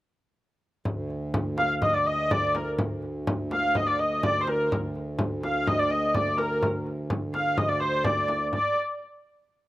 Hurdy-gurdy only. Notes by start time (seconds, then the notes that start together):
1.58 F5
1.82 D#5
1.94 D5
2.06 D#5
2.31 D5
2.56 A#4
3.53 F5
3.76 D#5
3.87 D5
3.99 D#5
4.24 D5
4.41 C5
4.48 A#4
5.45 F5
5.67 D#5
5.79 D5
5.90 D#5
6.14 D5
6.38 A#4
7.35 F5
7.57 D#5
7.69 D5
7.80 C5
8.05 D5
8.54 D5